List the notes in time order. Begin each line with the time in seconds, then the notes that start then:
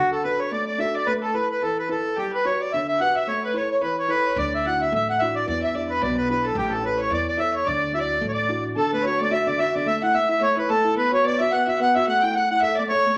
Already playing: D3 F#4
0.00 F#4
0.12 A4
0.23 D4 F#4 A4 B4
0.39 C#5
0.51 A3 D5
0.67 D5
0.78 D4 F#4 A4 E5
0.94 D5
1.06 A3 B4
1.22 A4
1.34 E4 A4 B4
1.50 B4
1.62 E3 A4
1.78 B4
1.89 E4 A4 B4
2.16 G3 G4
2.31 B4
2.44 F#4 G4 B4 C#5
2.61 D5
2.72 D3 E5
2.88 E5
3.00 F#4 G4 B4 F#5
3.15 E5
3.27 A3 C#5
3.43 B4
3.53 E4 A4 C#5
3.71 C#5
3.81 E3 B4
3.99 C#5
4.08 E4 A4 B4 C#5
4.26 C#5
4.36 D2 D3 D5
4.55 E5
4.65 D4 E4 F#4 F#5
4.82 E5
4.92 A1 A3 E5
5.09 F#5
5.19 D4 E4 F#4 E5
5.35 D5
5.46 E2 E3 D5
5.62 E5
5.71 D4 E4 E5
5.75 G4 D5
5.90 B4
6.01 B1 B2 D5
6.15 B4
6.28 D4 E4 G4 B4
6.43 A4
6.54 A1 A3 G4
6.70 A4
6.83 E4 A4 B4 C#5
6.97 C#5
7.10 E2 E3 D5
7.26 D5
7.37 E4 A4 C#5 E5
7.53 C#5
7.65 D2 D3 D5
7.92 D4 E4 F#4 E5
7.98 D5
8.21 A1 A3
8.28 C#5 D5
8.34 D5
8.49 D4 E4 F#4
8.76 D3 A4
8.93 A3 B4
9.02 F#4 C#5
9.18 A3 D5
9.31 F#4 E5
9.46 D3 D5
9.59 F#4 E5
9.75 D3 D5
9.86 A3 E5
10.02 E4 F#5
10.14 A3 E5
10.29 E4 E5
10.40 A3 C#5
10.55 E4 B4
10.69 A3 A4
10.85 E4
10.96 B3 B4
11.11 F#4 C#5
11.24 B3 D5
11.39 F#4 E5
11.51 B3 F#5
11.65 F#4 E5
11.77 B3 F#5
11.82 F#5
11.95 F#4 E5
12.05 A3 F#5
12.09 F#5
12.22 E4 G5
12.34 F#5
12.48 E4 F#5
12.60 A4 E5
12.75 A3 D5
12.88 A4 C#5
13.06 A3
13.14 D5